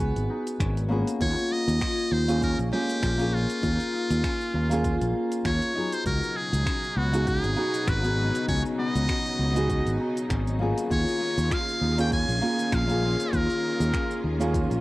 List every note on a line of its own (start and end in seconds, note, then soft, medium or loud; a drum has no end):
0.00 0.12 C#2 medium
0.00 0.86 B3 medium
0.00 0.90 B3 medium
0.00 0.60 C#4 medium
0.00 0.29 D#4 medium
0.00 0.87 D#4 medium
0.00 0.88 F#4 medium
0.00 1.26 F#4 medium
0.00 0.88 G#4 loud
0.00 shaker medium
0.16 0.27 G#1 medium
0.16 closed hi-hat soft
0.16 shaker soft
0.30 2.11 D#4 medium
0.47 closed hi-hat soft
0.47 shaker medium
0.60 1.02 G#1 medium
0.60 2.41 C#4 medium
0.60 finger snap loud
0.60 kick loud
0.60 closed hi-hat medium
0.60 shaker medium
0.77 closed hi-hat soft
0.77 shaker soft
0.89 2.24 A#3 medium
0.89 1.57 B3 loud
0.89 2.24 C#4 medium
0.89 2.25 F4 medium
0.89 2.25 G#4 medium
1.08 closed hi-hat soft
1.08 shaker medium
1.20 1.35 D#2 loud
1.20 1.81 F4 medium
1.20 1.54 C#5 loud
1.20 kick loud
1.20 closed hi-hat medium
1.20 shaker medium
1.38 shaker soft
1.51 2.72 A#3 medium
1.51 2.14 D#5 loud
1.68 1.79 D#2 medium
1.68 closed hi-hat soft
1.68 shaker medium
1.81 3.02 F4 medium
1.81 finger snap medium
1.81 kick loud
1.81 closed hi-hat medium
1.81 shaker soft
1.99 shaker soft
2.11 2.54 D#2 medium
2.11 3.93 D#4 medium
2.11 2.42 C5 loud
2.28 2.69 A#3 medium
2.28 2.69 C#4 medium
2.28 2.69 F4 medium
2.28 2.70 G#4 medium
2.28 closed hi-hat soft
2.28 shaker medium
2.42 4.23 C#4 medium
2.42 2.57 A#4 loud
2.42 kick loud
2.42 closed hi-hat medium
2.42 shaker medium
2.59 2.70 A#1 medium
2.59 closed hi-hat soft
2.59 shaker soft
2.71 3.16 G#3 loud
2.71 3.15 A#3 loud
2.71 3.32 A#3 loud
2.71 3.15 C#4 medium
2.71 3.16 F4 medium
2.71 3.36 G4 loud
2.89 closed hi-hat soft
2.89 shaker medium
3.02 3.45 A#1 medium
3.02 3.62 F4 medium
3.02 finger snap loud
3.02 kick loud
3.02 closed hi-hat medium
3.02 shaker medium
3.17 4.66 A#3 medium
3.17 4.67 C#4 medium
3.17 4.67 F4 medium
3.17 4.68 G#4 loud
3.17 closed hi-hat soft
3.17 shaker soft
3.33 4.54 A#3 medium
3.33 5.15 F4 loud
3.50 closed hi-hat soft
3.50 shaker medium
3.63 3.77 D#2 medium
3.63 4.84 F4 medium
3.63 kick medium
3.63 closed hi-hat medium
3.63 shaker soft
3.80 closed hi-hat soft
3.80 shaker soft
3.93 5.75 D#4 medium
4.10 4.21 D#2 medium
4.10 closed hi-hat soft
4.10 shaker medium
4.24 6.66 C#4 medium
4.24 finger snap loud
4.24 kick loud
4.24 closed hi-hat medium
4.24 shaker medium
4.41 shaker soft
4.54 4.96 D#2 medium
4.54 5.14 A#3 loud
4.69 5.71 A#3 medium
4.69 5.72 C#4 medium
4.69 5.72 F4 medium
4.69 5.73 G#4 loud
4.69 closed hi-hat soft
4.69 shaker medium
4.84 5.45 F4 medium
4.84 kick loud
4.84 closed hi-hat medium
4.84 shaker medium
5.01 5.12 A#1 medium
5.01 closed hi-hat soft
5.01 shaker soft
5.15 7.03 A#3 medium
5.32 closed hi-hat soft
5.32 shaker medium
5.45 5.59 D#2 loud
5.45 6.11 F4 medium
5.45 5.95 C#5 medium
5.45 finger snap loud
5.45 kick loud
5.45 closed hi-hat medium
5.45 shaker medium
5.62 closed hi-hat soft
5.62 shaker soft
5.74 7.10 F#3 medium
5.74 7.09 B3 medium
5.74 6.35 D#4 medium
5.74 7.09 D#4 medium
5.74 7.11 G#4 medium
5.92 6.06 C5 medium
5.92 closed hi-hat soft
5.92 shaker medium
6.05 6.19 C#2 loud
6.05 10.86 B2 medium
6.05 10.86 C#3 medium
6.05 10.86 F#3 medium
6.05 10.86 D#4 medium
6.05 7.27 F#4 medium
6.05 6.38 A#4 loud
6.05 kick loud
6.05 closed hi-hat medium
6.05 shaker medium
6.23 shaker soft
6.36 8.18 D#4 medium
6.36 6.99 G#4 loud
6.53 6.64 C#2 medium
6.53 closed hi-hat soft
6.53 shaker medium
6.66 8.48 C#4 medium
6.66 finger snap loud
6.66 kick loud
6.66 closed hi-hat medium
6.66 shaker medium
6.84 shaker soft
6.96 7.39 C#2 medium
6.96 7.57 B3 loud
6.96 7.29 F#4 medium
7.13 7.54 B3 medium
7.13 7.54 D#4 medium
7.13 7.54 F#4 medium
7.13 7.55 G#4 medium
7.13 closed hi-hat soft
7.13 shaker medium
7.27 7.87 F#4 medium
7.27 7.90 G#4 loud
7.27 kick loud
7.27 closed hi-hat medium
7.27 shaker medium
7.44 7.55 G#1 medium
7.44 closed hi-hat soft
7.44 shaker soft
7.56 8.00 B3 loud
7.56 8.78 B3 medium
7.56 8.00 D#4 medium
7.56 8.00 F#4 medium
7.56 8.01 G#4 loud
7.74 closed hi-hat soft
7.74 shaker medium
7.87 8.30 G#1 medium
7.87 9.08 F#4 medium
7.87 8.48 B4 loud
7.87 finger snap loud
7.87 kick loud
7.87 closed hi-hat medium
7.87 shaker medium
8.03 9.51 B3 medium
8.03 9.52 D#4 medium
8.03 9.52 F#4 medium
8.03 9.53 G#4 loud
8.03 closed hi-hat soft
8.03 shaker soft
8.18 9.99 D#4 medium
8.35 closed hi-hat soft
8.35 shaker medium
8.48 8.62 C#2 loud
8.48 10.30 C#4 medium
8.48 8.62 C#5 loud
8.48 kick loud
8.48 closed hi-hat medium
8.48 shaker medium
8.65 shaker soft
8.78 9.38 B3 loud
8.78 9.96 D#5 loud
8.95 9.06 C#2 medium
8.95 closed hi-hat soft
8.95 shaker medium
9.09 9.69 F#4 medium
9.09 finger snap loud
9.09 kick loud
9.09 closed hi-hat medium
9.09 shaker medium
9.26 shaker soft
9.39 9.81 C#2 medium
9.39 10.60 B3 medium
9.54 10.56 B3 medium
9.54 10.57 D#4 medium
9.54 10.57 F#4 medium
9.54 10.58 G#4 loud
9.54 closed hi-hat soft
9.54 shaker medium
9.69 10.96 F#4 medium
9.69 kick loud
9.69 closed hi-hat medium
9.69 shaker medium
9.86 9.97 G#1 medium
9.86 closed hi-hat soft
9.86 shaker soft
9.99 11.81 D#4 medium
10.17 closed hi-hat soft
10.17 shaker medium
10.30 10.72 G#1 medium
10.30 12.11 C#4 medium
10.30 finger snap loud
10.30 kick loud
10.30 closed hi-hat medium
10.30 shaker medium
10.47 closed hi-hat soft
10.47 shaker soft
10.59 11.94 A#3 medium
10.59 11.27 B3 medium
10.59 11.94 C#4 medium
10.59 11.95 F4 medium
10.59 11.95 G#4 medium
10.78 closed hi-hat soft
10.78 shaker medium
10.90 11.04 D#2 medium
10.90 14.80 D#3 medium
10.90 14.80 C#4 medium
10.90 11.51 F4 medium
10.90 14.80 F4 medium
10.90 14.80 G#4 medium
10.90 11.55 C#5 loud
10.90 kick loud
10.90 closed hi-hat soft
10.90 shaker medium
11.08 shaker soft
11.21 12.41 A#3 medium
11.38 11.49 D#2 medium
11.38 closed hi-hat soft
11.38 shaker medium
11.51 12.72 F4 medium
11.51 11.99 F5 loud
11.51 finger snap loud
11.51 kick loud
11.51 closed hi-hat medium
11.51 shaker medium
11.69 shaker soft
11.81 12.24 D#2 medium
11.81 13.63 D#4 medium
11.98 12.38 A#3 medium
11.98 12.39 C#4 medium
11.98 12.39 F4 medium
11.98 12.39 G#4 medium
11.98 12.12 G5 loud
11.98 closed hi-hat soft
11.98 shaker medium
12.12 13.93 C#4 medium
12.12 12.76 G#5 loud
12.12 kick loud
12.12 closed hi-hat medium
12.12 shaker medium
12.29 12.40 A#1 medium
12.29 closed hi-hat soft
12.29 shaker soft
12.41 12.85 A#3 loud
12.41 13.02 A#3 loud
12.41 12.85 C#4 medium
12.41 12.85 F4 medium
12.41 12.86 G#4 loud
12.59 closed hi-hat soft
12.59 shaker medium
12.72 13.15 A#1 medium
12.72 13.32 F4 medium
12.72 13.36 F5 medium
12.72 finger snap loud
12.72 kick loud
12.72 closed hi-hat medium
12.72 shaker medium
12.88 14.36 A#3 medium
12.88 14.36 C#4 medium
12.88 14.37 F4 medium
12.88 14.38 G#4 loud
12.88 closed hi-hat soft
12.88 shaker soft
13.03 14.23 A#3 medium
13.20 closed hi-hat soft
13.20 shaker medium
13.33 13.47 D#2 loud
13.33 14.53 F4 medium
13.33 14.25 A#4 medium
13.33 kick loud
13.33 closed hi-hat medium
13.33 shaker medium
13.50 closed hi-hat soft
13.50 shaker soft
13.63 14.80 D#4 medium
13.80 13.91 D#2 medium
13.80 closed hi-hat soft
13.80 shaker medium
13.93 14.80 C#4 medium
13.93 finger snap loud
13.93 kick loud
13.93 closed hi-hat medium
13.93 shaker medium
14.11 shaker soft
14.24 14.66 D#2 medium
14.24 14.80 A#3 medium
14.39 14.80 A#3 medium
14.39 14.80 C#4 medium
14.39 14.80 F4 medium
14.39 14.80 G#4 loud
14.39 closed hi-hat soft
14.39 shaker medium
14.54 14.80 F4 medium
14.54 kick loud
14.54 closed hi-hat medium
14.54 shaker medium
14.71 14.80 A#1 medium
14.71 closed hi-hat soft
14.71 shaker soft